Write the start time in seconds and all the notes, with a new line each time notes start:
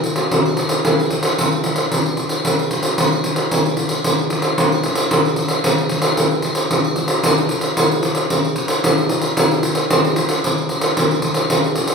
0.04 pandeiro
0.16 pandeiro
0.31 pandeiro
0.46 pandeiro
0.57 pandeiro
0.69 pandeiro
0.85 pandeiro
0.99 pandeiro
1.10 pandeiro
1.23 pandeiro
1.38 pandeiro
1.52 pandeiro
1.64 pandeiro
1.76 pandeiro
1.92 pandeiro
2.06 pandeiro
2.17 pandeiro
2.29 pandeiro
2.45 pandeiro
2.59 pandeiro
2.71 pandeiro
2.83 pandeiro
2.98 pandeiro
3.12 pandeiro
3.24 pandeiro
3.36 pandeiro
3.51 pandeiro
3.66 pandeiro
3.77 pandeiro
3.89 pandeiro
4.04 pandeiro
4.19 pandeiro
4.30 pandeiro
4.42 pandeiro
4.58 pandeiro
4.72 pandeiro
4.83 pandeiro
4.95 pandeiro
5.11 pandeiro
5.25 pandeiro
5.36 pandeiro
5.48 pandeiro
5.64 pandeiro
5.78 pandeiro
5.89 pandeiro
6.02 pandeiro
6.17 pandeiro
6.31 pandeiro
6.42 pandeiro
6.55 pandeiro
6.71 pandeiro
6.84 pandeiro
6.96 pandeiro
7.08 pandeiro
7.23 pandeiro
7.38 pandeiro
7.49 pandeiro
7.61 pandeiro
7.77 pandeiro
7.91 pandeiro
8.03 pandeiro
8.15 pandeiro
8.30 pandeiro
8.44 pandeiro
8.56 pandeiro
8.68 pandeiro
8.84 pandeiro
8.98 pandeiro
9.09 pandeiro
9.21 pandeiro
9.37 pandeiro
9.51 pandeiro
9.63 pandeiro
9.75 pandeiro
9.90 pandeiro
10.04 pandeiro
10.16 pandeiro
10.29 pandeiro
10.44 pandeiro
10.58 pandeiro
10.69 pandeiro
10.81 pandeiro
10.97 pandeiro
11.11 pandeiro
11.22 pandeiro
11.34 pandeiro
11.50 pandeiro
11.64 pandeiro
11.75 pandeiro
11.87 pandeiro